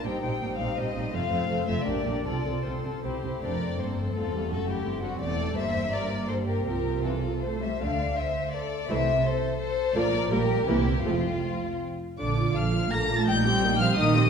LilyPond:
<<
  \new Staff \with { instrumentName = "Violin section" } { \time 3/4 \key c \dorian \tempo 4 = 165 g''8 g''4 f''8 ees''4 | \key f \major f''4. e''8 d''4 | d''4 c''4 g'4 | bes'4 a'4 f'4 |
fis'8 e'4 d'8 a'4 | c''4 bes'4 a'8 g'8 | g'4 f'4 a'8 c''8 | d''4 c''4 a'4 |
c''4 a'4 a'4 | bes'4 g'4 e'4 | c'2 r4 | \key bes \major d'''4 f'''4 bes'''8. a'''16 |
g'''8 g'''4 f'''8 ees'''4 | }
  \new Staff \with { instrumentName = "Violin section" } { \time 3/4 \key c \dorian << { <ees' c''>8 <ees' c''>8 <ees' c''>8 <ees' c''>8 <ees' c''>8 <ees' c''>8 | \key f \major <f' c''>8 <f' c''>8 <f' c''>8 <f' c''>8 <g' bes'>8 <g' bes'>8 | a'8 a'8 a'8 a'8 <g' c''>8 <g' c''>8 | r2. |
r2. | r2. | r2. | r2. |
r2. | r2. | r2. | \key bes \major d''4 f''4 bes''8. a''16 |
g''8 g''4 f''8 ees''4 | } \\ { r2. | r2. | r2 c''4 | d''4 c''4 a'4 |
a'8 g'4 fis'8 d''4 | e''4 d''4 c''8 bes'8 | bes'4 a'4 c''8 e''8 | f''4 e''4 d''4 |
e''4 c''4 c''4 | d''4 bes'4 g'4 | f'2 r4 | r2. |
r2. | } >> }
  \new Staff \with { instrumentName = "Viola section" } { \time 3/4 \key c \dorian << { c'8 c'8 c'8 c'8 c'8 c'8 | \key f \major c'8 c'8 c'8 c'8 d'8 d'8 | f'8 f'8 f'8 f'8 e'8 e'8 | d'8 c'8 bes8 a8 a4~ |
a2 c'4 | bes4 bes2 | c'4 e8 f8 a8 g8 | a8 r2 r8 |
a8 r2 r8 | bes8 r8 bes8 r8 bes8 r8 | a8 r2 r8 | \key bes \major d'8 f'8 d'8 f'8 d'8 f'8 |
ees'8 g'8 ees'8 g'8 ees'8 g'8 | } \\ { g8 g8 g8 g8 g8 g8 | a8 a8 a8 a8 g8 g8 | c'8 c'8 c'8 c'8 c'8 c'8 | a4 c'4 c'8 g8 |
a4 c'4 a4 | g4 g2 | f4 r2 | d8 r2 r8 |
e8 r2 r8 | f8 r8 g8 r8 e8 r8 | f8 r2 r8 | d8 f8 d8 f8 d8 f8 |
bes8 c'8 bes8 c'8 bes8 c'8 | } >> }
  \new Staff \with { instrumentName = "Cello section" } { \clef bass \time 3/4 \key c \dorian bes,8 bes,8 bes,8 bes,8 bes,8 bes,8 | \key f \major f,8 f,8 f,8 f,8 bes,8 bes,8 | c8 c8 c8 c8 c8 c8 | f,4 g,4 e,4 |
fis,4 g,4 e,4 | g,2. | c2~ c8 r8 | d4 r2 |
c4 r2 | bes,4 bes,4 c4 | f,4 r2 | \key bes \major d4 f4 bes8. a16 |
g8 g4 f8 ees4 | }
  \new Staff \with { instrumentName = "Double bass section" } { \clef bass \time 3/4 \key c \dorian bes,,8 bes,,8 bes,,8 bes,,8 bes,,8 bes,,8 | \key f \major f,,8 f,,8 f,,8 f,,8 bes,,8 bes,,8 | c,8 c,8 c,8 c,8 c,8 c,8 | f,,4 g,,4 e,,4 |
fis,,4 g,,4 e,,4 | g,,2. | c,2~ c,8 r8 | d,4 r2 |
c,4 r2 | bes,,4 bes,,4 c,4 | f,,4 r2 | \key bes \major bes,,4 bes,,4 bes,,4 |
bes,,4 bes,,4 bes,,4 | }
>>